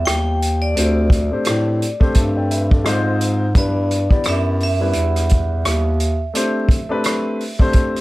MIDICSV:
0, 0, Header, 1, 5, 480
1, 0, Start_track
1, 0, Key_signature, 1, "major"
1, 0, Tempo, 697674
1, 527, Time_signature, 4, 2, 24, 8
1, 5510, End_track
2, 0, Start_track
2, 0, Title_t, "Vibraphone"
2, 0, Program_c, 0, 11
2, 38, Note_on_c, 0, 79, 108
2, 424, Note_on_c, 0, 74, 78
2, 435, Note_off_c, 0, 79, 0
2, 1359, Note_off_c, 0, 74, 0
2, 2462, Note_on_c, 0, 74, 94
2, 2948, Note_on_c, 0, 76, 85
2, 2949, Note_off_c, 0, 74, 0
2, 3051, Note_off_c, 0, 76, 0
2, 3188, Note_on_c, 0, 76, 93
2, 5510, Note_off_c, 0, 76, 0
2, 5510, End_track
3, 0, Start_track
3, 0, Title_t, "Grand piano"
3, 0, Program_c, 1, 0
3, 0, Note_on_c, 1, 55, 64
3, 0, Note_on_c, 1, 59, 59
3, 0, Note_on_c, 1, 62, 63
3, 0, Note_on_c, 1, 64, 56
3, 0, Note_on_c, 1, 74, 76
3, 204, Note_off_c, 1, 55, 0
3, 204, Note_off_c, 1, 59, 0
3, 207, Note_off_c, 1, 62, 0
3, 209, Note_off_c, 1, 64, 0
3, 211, Note_off_c, 1, 74, 0
3, 516, Note_on_c, 1, 57, 66
3, 521, Note_on_c, 1, 60, 58
3, 525, Note_on_c, 1, 62, 60
3, 529, Note_on_c, 1, 67, 57
3, 535, Note_on_c, 1, 72, 68
3, 805, Note_off_c, 1, 57, 0
3, 808, Note_off_c, 1, 60, 0
3, 810, Note_off_c, 1, 62, 0
3, 812, Note_off_c, 1, 67, 0
3, 815, Note_off_c, 1, 72, 0
3, 899, Note_on_c, 1, 57, 69
3, 903, Note_on_c, 1, 60, 66
3, 906, Note_on_c, 1, 62, 61
3, 912, Note_on_c, 1, 67, 69
3, 916, Note_on_c, 1, 72, 77
3, 1254, Note_off_c, 1, 57, 0
3, 1256, Note_off_c, 1, 60, 0
3, 1258, Note_off_c, 1, 62, 0
3, 1261, Note_off_c, 1, 67, 0
3, 1263, Note_off_c, 1, 72, 0
3, 1376, Note_on_c, 1, 57, 84
3, 1379, Note_on_c, 1, 60, 71
3, 1384, Note_on_c, 1, 62, 68
3, 1389, Note_on_c, 1, 67, 74
3, 1392, Note_on_c, 1, 72, 89
3, 1483, Note_on_c, 1, 81, 57
3, 1488, Note_on_c, 1, 76, 46
3, 1489, Note_off_c, 1, 72, 0
3, 1619, Note_off_c, 1, 81, 0
3, 1622, Note_off_c, 1, 76, 0
3, 1626, Note_on_c, 1, 79, 64
3, 1629, Note_on_c, 1, 74, 58
3, 1721, Note_off_c, 1, 79, 0
3, 1723, Note_off_c, 1, 74, 0
3, 1729, Note_on_c, 1, 76, 68
3, 1733, Note_on_c, 1, 71, 52
3, 1862, Note_off_c, 1, 76, 0
3, 1864, Note_off_c, 1, 71, 0
3, 1869, Note_on_c, 1, 74, 63
3, 1870, Note_on_c, 1, 69, 59
3, 1950, Note_off_c, 1, 60, 0
3, 1957, Note_on_c, 1, 56, 88
3, 1960, Note_on_c, 1, 60, 82
3, 1961, Note_off_c, 1, 57, 0
3, 1965, Note_off_c, 1, 62, 0
3, 1966, Note_on_c, 1, 63, 84
3, 1968, Note_off_c, 1, 67, 0
3, 1970, Note_on_c, 1, 65, 85
3, 1973, Note_on_c, 1, 72, 96
3, 2097, Note_off_c, 1, 69, 0
3, 2097, Note_off_c, 1, 74, 0
3, 2363, Note_off_c, 1, 56, 0
3, 2364, Note_off_c, 1, 60, 0
3, 2368, Note_off_c, 1, 63, 0
3, 2369, Note_off_c, 1, 65, 0
3, 2371, Note_off_c, 1, 72, 0
3, 2437, Note_on_c, 1, 55, 69
3, 2442, Note_on_c, 1, 59, 62
3, 2445, Note_on_c, 1, 62, 63
3, 2450, Note_on_c, 1, 64, 62
3, 2457, Note_on_c, 1, 71, 77
3, 2726, Note_off_c, 1, 55, 0
3, 2728, Note_off_c, 1, 59, 0
3, 2730, Note_off_c, 1, 62, 0
3, 2732, Note_off_c, 1, 64, 0
3, 2736, Note_off_c, 1, 71, 0
3, 2816, Note_on_c, 1, 67, 71
3, 2823, Note_on_c, 1, 59, 67
3, 2827, Note_on_c, 1, 62, 58
3, 2830, Note_on_c, 1, 64, 67
3, 2834, Note_on_c, 1, 74, 80
3, 3173, Note_off_c, 1, 67, 0
3, 3176, Note_off_c, 1, 59, 0
3, 3178, Note_off_c, 1, 62, 0
3, 3180, Note_off_c, 1, 64, 0
3, 3182, Note_off_c, 1, 74, 0
3, 3299, Note_on_c, 1, 55, 66
3, 3303, Note_on_c, 1, 59, 64
3, 3309, Note_on_c, 1, 62, 63
3, 3312, Note_on_c, 1, 64, 68
3, 3315, Note_on_c, 1, 71, 73
3, 4040, Note_off_c, 1, 55, 0
3, 4042, Note_off_c, 1, 59, 0
3, 4045, Note_off_c, 1, 62, 0
3, 4046, Note_off_c, 1, 64, 0
3, 4048, Note_off_c, 1, 71, 0
3, 4359, Note_on_c, 1, 57, 77
3, 4366, Note_on_c, 1, 60, 67
3, 4368, Note_on_c, 1, 62, 70
3, 4375, Note_on_c, 1, 67, 64
3, 4377, Note_on_c, 1, 72, 87
3, 4647, Note_off_c, 1, 57, 0
3, 4650, Note_off_c, 1, 60, 0
3, 4652, Note_off_c, 1, 62, 0
3, 4655, Note_off_c, 1, 67, 0
3, 4656, Note_off_c, 1, 72, 0
3, 4741, Note_on_c, 1, 57, 85
3, 4745, Note_on_c, 1, 60, 71
3, 4749, Note_on_c, 1, 62, 82
3, 4754, Note_on_c, 1, 67, 78
3, 4757, Note_on_c, 1, 71, 101
3, 5095, Note_off_c, 1, 57, 0
3, 5097, Note_off_c, 1, 60, 0
3, 5099, Note_off_c, 1, 62, 0
3, 5102, Note_off_c, 1, 67, 0
3, 5103, Note_off_c, 1, 71, 0
3, 5221, Note_on_c, 1, 57, 78
3, 5225, Note_on_c, 1, 60, 74
3, 5230, Note_on_c, 1, 62, 77
3, 5233, Note_on_c, 1, 67, 81
3, 5239, Note_on_c, 1, 72, 96
3, 5510, Note_off_c, 1, 57, 0
3, 5510, Note_off_c, 1, 60, 0
3, 5510, Note_off_c, 1, 62, 0
3, 5510, Note_off_c, 1, 67, 0
3, 5510, Note_off_c, 1, 72, 0
3, 5510, End_track
4, 0, Start_track
4, 0, Title_t, "Bass clarinet"
4, 0, Program_c, 2, 71
4, 47, Note_on_c, 2, 39, 84
4, 503, Note_off_c, 2, 39, 0
4, 525, Note_on_c, 2, 38, 98
4, 888, Note_off_c, 2, 38, 0
4, 914, Note_on_c, 2, 45, 42
4, 952, Note_off_c, 2, 45, 0
4, 1008, Note_on_c, 2, 45, 98
4, 1296, Note_off_c, 2, 45, 0
4, 1483, Note_on_c, 2, 43, 88
4, 1941, Note_off_c, 2, 43, 0
4, 1971, Note_on_c, 2, 44, 95
4, 2425, Note_off_c, 2, 44, 0
4, 2444, Note_on_c, 2, 43, 103
4, 2808, Note_off_c, 2, 43, 0
4, 2826, Note_on_c, 2, 42, 39
4, 2866, Note_off_c, 2, 42, 0
4, 2932, Note_on_c, 2, 42, 92
4, 3386, Note_off_c, 2, 42, 0
4, 3406, Note_on_c, 2, 40, 83
4, 3863, Note_off_c, 2, 40, 0
4, 3890, Note_on_c, 2, 39, 94
4, 4345, Note_off_c, 2, 39, 0
4, 5510, End_track
5, 0, Start_track
5, 0, Title_t, "Drums"
5, 48, Note_on_c, 9, 37, 94
5, 49, Note_on_c, 9, 42, 88
5, 117, Note_off_c, 9, 37, 0
5, 117, Note_off_c, 9, 42, 0
5, 290, Note_on_c, 9, 42, 64
5, 359, Note_off_c, 9, 42, 0
5, 527, Note_on_c, 9, 42, 102
5, 596, Note_off_c, 9, 42, 0
5, 757, Note_on_c, 9, 36, 96
5, 771, Note_on_c, 9, 42, 79
5, 825, Note_off_c, 9, 36, 0
5, 840, Note_off_c, 9, 42, 0
5, 996, Note_on_c, 9, 42, 83
5, 1011, Note_on_c, 9, 37, 98
5, 1064, Note_off_c, 9, 42, 0
5, 1079, Note_off_c, 9, 37, 0
5, 1252, Note_on_c, 9, 42, 59
5, 1320, Note_off_c, 9, 42, 0
5, 1381, Note_on_c, 9, 36, 84
5, 1450, Note_off_c, 9, 36, 0
5, 1475, Note_on_c, 9, 42, 88
5, 1483, Note_on_c, 9, 36, 86
5, 1544, Note_off_c, 9, 42, 0
5, 1552, Note_off_c, 9, 36, 0
5, 1725, Note_on_c, 9, 42, 56
5, 1794, Note_off_c, 9, 42, 0
5, 1867, Note_on_c, 9, 36, 94
5, 1936, Note_off_c, 9, 36, 0
5, 1966, Note_on_c, 9, 37, 92
5, 1966, Note_on_c, 9, 42, 75
5, 2034, Note_off_c, 9, 37, 0
5, 2035, Note_off_c, 9, 42, 0
5, 2206, Note_on_c, 9, 42, 68
5, 2275, Note_off_c, 9, 42, 0
5, 2442, Note_on_c, 9, 42, 92
5, 2443, Note_on_c, 9, 36, 112
5, 2511, Note_off_c, 9, 42, 0
5, 2512, Note_off_c, 9, 36, 0
5, 2688, Note_on_c, 9, 42, 78
5, 2757, Note_off_c, 9, 42, 0
5, 2824, Note_on_c, 9, 36, 84
5, 2893, Note_off_c, 9, 36, 0
5, 2914, Note_on_c, 9, 42, 75
5, 2929, Note_on_c, 9, 37, 100
5, 2983, Note_off_c, 9, 42, 0
5, 2998, Note_off_c, 9, 37, 0
5, 3166, Note_on_c, 9, 46, 39
5, 3235, Note_off_c, 9, 46, 0
5, 3393, Note_on_c, 9, 42, 81
5, 3462, Note_off_c, 9, 42, 0
5, 3550, Note_on_c, 9, 37, 35
5, 3550, Note_on_c, 9, 42, 52
5, 3619, Note_off_c, 9, 37, 0
5, 3619, Note_off_c, 9, 42, 0
5, 3641, Note_on_c, 9, 42, 55
5, 3658, Note_on_c, 9, 36, 77
5, 3710, Note_off_c, 9, 42, 0
5, 3726, Note_off_c, 9, 36, 0
5, 3889, Note_on_c, 9, 37, 89
5, 3889, Note_on_c, 9, 42, 87
5, 3958, Note_off_c, 9, 37, 0
5, 3958, Note_off_c, 9, 42, 0
5, 4126, Note_on_c, 9, 42, 69
5, 4195, Note_off_c, 9, 42, 0
5, 4367, Note_on_c, 9, 42, 98
5, 4436, Note_off_c, 9, 42, 0
5, 4600, Note_on_c, 9, 36, 102
5, 4615, Note_on_c, 9, 42, 71
5, 4669, Note_off_c, 9, 36, 0
5, 4684, Note_off_c, 9, 42, 0
5, 4842, Note_on_c, 9, 42, 81
5, 4857, Note_on_c, 9, 37, 91
5, 4910, Note_off_c, 9, 42, 0
5, 4925, Note_off_c, 9, 37, 0
5, 5094, Note_on_c, 9, 46, 42
5, 5163, Note_off_c, 9, 46, 0
5, 5225, Note_on_c, 9, 36, 80
5, 5294, Note_off_c, 9, 36, 0
5, 5319, Note_on_c, 9, 42, 80
5, 5328, Note_on_c, 9, 36, 89
5, 5387, Note_off_c, 9, 42, 0
5, 5396, Note_off_c, 9, 36, 0
5, 5478, Note_on_c, 9, 37, 39
5, 5478, Note_on_c, 9, 42, 46
5, 5510, Note_off_c, 9, 37, 0
5, 5510, Note_off_c, 9, 42, 0
5, 5510, End_track
0, 0, End_of_file